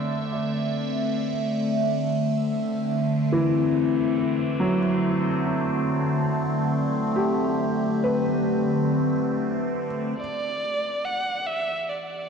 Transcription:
Already playing: D3 A3 C4 D5 E5
3.32 E3
4.60 F#3
7.16 G4
8.04 B4
10.18 E3 D5
10.43 B3
11.05 G4 F#5
11.47 E5
11.90 D5

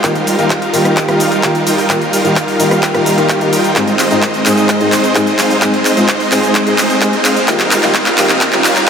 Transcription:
0.03 D#3 G3 A#3 D#4 F4 G4, kick, clap, closed hi-hat, cabasa
0.15 closed hi-hat, cabasa
0.27 open hi-hat, cabasa
0.38 D#3 G3 A#3 D#4 F4 G4 A#4 F5, closed hi-hat, cabasa
0.50 kick, clap, closed hi-hat, cabasa
0.62 closed hi-hat, cabasa
0.73 D#3 G3 A#3 D#4 F4 G4 A#4 F5, open hi-hat, cabasa
0.85 cross-stick, closed hi-hat, cabasa
0.97 kick, clap, closed hi-hat, cabasa
1.08 D#3 G3 A#3 D#4 F4 G4 A#4 F5, cross-stick, closed hi-hat, cabasa
1.20 open hi-hat, cabasa
1.32 closed hi-hat, cabasa
1.43 D#3 G3 A#3 D#4 F4 G4 A#4 F5, kick, clap, closed hi-hat, cabasa
1.55 closed hi-hat, cabasa
1.67 G3 D#4 F4 A#4 G5, open hi-hat, cabasa
1.78 open hi-hat, cabasa
1.89 D#3 G3 A#3 D#4 F4 G4 A#4 F5, kick, clap, closed hi-hat, cabasa
2.02 closed hi-hat, cabasa
2.13 open hi-hat, cabasa
2.24 D#3 G3 A#3 D#4 F4 G4 A#4 F5, closed hi-hat, cabasa
2.36 kick, clap, closed hi-hat, cabasa
2.48 open hi-hat, cabasa
2.59 D#3 G3 A#3 D#4 F4 G4 A#4 F5, open hi-hat, cabasa
2.71 cross-stick, closed hi-hat, cabasa
2.83 kick, clap, closed hi-hat, cabasa
2.94 D#3 G3 A#3 D#4 F4 G4 A#4 F5, cross-stick, closed hi-hat, cabasa
3.06 D#3 A#3 D#4 F4 G4, open hi-hat, cabasa
3.17 D#3 A#3 D#4 F4 G4, closed hi-hat, cabasa
3.29 G3 D#4 F4 A#4 F5, kick, clap, closed hi-hat, cabasa
3.40 D#3 A#3 D#4 F4 G4, closed hi-hat, cabasa
3.53 G3 D#4 F4 A#4 G5, open hi-hat, cabasa
3.64 closed hi-hat, cabasa
3.75 G#2 G#3 C4 D#4 G#4 C5 D#5, kick, clap, closed hi-hat, riser, cabasa
3.88 closed hi-hat, cabasa
3.99 clap, open hi-hat, cabasa
4.10 G#2 G#3 C4 D#4 F4 C5 D#5, closed hi-hat, cabasa
4.22 kick, clap, closed hi-hat, cabasa
4.34 closed hi-hat, cabasa
4.45 G#2 G#3 C4 D#4 G#4 C5 D#5, clap, open hi-hat, cabasa
4.57 closed hi-hat, cabasa
4.69 kick, clap, closed hi-hat, cabasa
4.80 G#2 G#3 C4 D#4 G#4 C5 D#5, closed hi-hat, cabasa
4.92 clap, open hi-hat, cabasa
5.04 closed hi-hat, cabasa
5.15 G#2 G#3 C4 D#4 G#4 C5 D#5, kick, clap, closed hi-hat, cabasa
5.27 closed hi-hat, cabasa
5.39 G#3 C4 D#4 C5 F5, clap, open hi-hat, cabasa
5.50 open hi-hat, cabasa
5.61 G#2 G#3 C4 D#4 G#4 C5 D#5, kick, clap, closed hi-hat, cabasa
5.74 closed hi-hat, cabasa
5.85 clap, open hi-hat, cabasa
5.96 G#2 G#3 C4 D#4 F4 C5 D#5, closed hi-hat, cabasa
6.09 kick, clap, closed hi-hat, cabasa
6.20 open hi-hat, cabasa
6.31 G#2 G#3 C4 D#4 G#4 C5 D#5, clap, open hi-hat, cabasa
6.43 closed hi-hat, cabasa
6.55 kick, clap, closed hi-hat, cabasa
6.66 G#2 G#3 C4 D#4 G#4 C5 D#5, closed hi-hat, cabasa
6.78 clap, open hi-hat, cabasa
6.90 closed hi-hat, cabasa
7.01 G#2 G#3 C4 D#4 G#4 C5, kick, clap, closed hi-hat, cabasa
7.13 closed hi-hat, cabasa
7.25 G#3 C4 D#4 C5 F5, clap, open hi-hat, cabasa
7.36 closed hi-hat, cabasa
7.47 D#3 G3 A#3 D#4 F4 G4 F5, kick, clap, closed hi-hat, cabasa
7.60 clap, closed hi-hat, cabasa
7.71 clap, open hi-hat, cabasa
7.82 D#3 G3 A#3 D#4 F4 G4 A#4 F5, clap, closed hi-hat, cabasa
7.95 kick, clap, closed hi-hat, cabasa
8.06 clap, closed hi-hat, cabasa
8.17 D#3 G3 A#3 D#4 F4 G4 A#4 F5, clap, open hi-hat, cabasa
8.29 clap, closed hi-hat, cabasa
8.41 kick, clap, closed hi-hat, cabasa
8.52 D#3 G3 A#3 D#4 F4 G4 A#4 F5, clap, closed hi-hat, cabasa
8.64 clap, open hi-hat, cabasa
8.76 clap, closed hi-hat, cabasa

